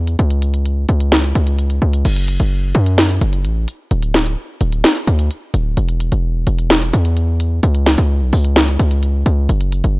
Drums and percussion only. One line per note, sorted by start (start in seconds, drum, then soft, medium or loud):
0.07 closed hi-hat medium
0.19 closed hi-hat medium
0.30 closed hi-hat medium
0.42 closed hi-hat medium
0.54 closed hi-hat medium
0.66 closed hi-hat medium
0.89 closed hi-hat medium
1.00 closed hi-hat medium
1.12 snare loud
1.12 closed hi-hat medium
1.24 closed hi-hat medium
1.35 closed hi-hat medium
1.47 closed hi-hat medium
1.59 closed hi-hat medium
1.70 closed hi-hat medium
1.93 closed hi-hat medium
2.05 closed hi-hat medium
2.05 crash loud
2.16 closed hi-hat medium
2.28 closed hi-hat medium
2.40 closed hi-hat medium
2.75 closed hi-hat medium
2.86 closed hi-hat medium
2.98 snare loud
2.98 closed hi-hat medium
3.10 closed hi-hat medium
3.21 closed hi-hat loud
3.33 closed hi-hat medium
3.45 closed hi-hat medium
3.68 closed hi-hat medium
3.91 closed hi-hat medium
4.03 closed hi-hat medium
4.14 snare medium
4.14 closed hi-hat medium
4.26 closed hi-hat medium
4.61 closed hi-hat medium
4.73 closed hi-hat medium
4.84 snare loud
4.84 closed hi-hat medium
4.96 closed hi-hat medium
5.08 closed hi-hat loud
5.19 closed hi-hat medium
5.31 closed hi-hat medium
5.54 closed hi-hat medium
5.77 closed hi-hat medium
5.89 closed hi-hat medium
6.00 closed hi-hat medium
6.12 closed hi-hat medium
6.47 closed hi-hat medium
6.59 closed hi-hat medium
6.70 snare loud
6.70 closed hi-hat medium
6.82 closed hi-hat medium
6.94 closed hi-hat medium
7.05 closed hi-hat medium
7.17 closed hi-hat medium
7.40 closed hi-hat medium
7.63 closed hi-hat medium
7.75 closed hi-hat medium
7.86 snare medium
7.86 closed hi-hat medium
7.98 closed hi-hat medium
8.33 open hi-hat medium
8.45 closed hi-hat medium
8.56 snare loud
8.56 closed hi-hat medium
8.68 closed hi-hat medium
8.80 closed hi-hat medium
8.91 closed hi-hat medium
9.03 closed hi-hat medium
9.26 closed hi-hat medium
9.49 closed hi-hat medium
9.61 closed hi-hat medium
9.72 closed hi-hat medium
9.84 closed hi-hat medium